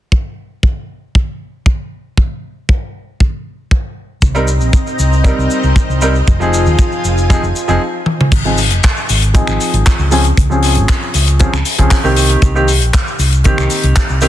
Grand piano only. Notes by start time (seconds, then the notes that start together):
4.35 G3 C4 D#4 A#4
5.24 G3 C4 D#4 A#4
6.02 G3 C4 D#4 A#4
6.40 F3 C4 D#4 G#4
7.30 F3 C4 D#4 G#4
7.68 F3 C4 D#4 G#4
8.45 F3 C4 D#4 G#4
9.34 F3 C4 D#4 G#4
10.11 F3 C4 C#4 G#4
10.50 F3 C4 C#4 G#4
11.40 F3 C4 C#4 G#4
11.78 F3 C4 C#4 G#4
12.04 D#3 A#3 C4 G4
12.55 D#3 A#3 C4 G4
13.44 D#3 A#3 C4 G4
14.21 D#3 A#3 C4 G4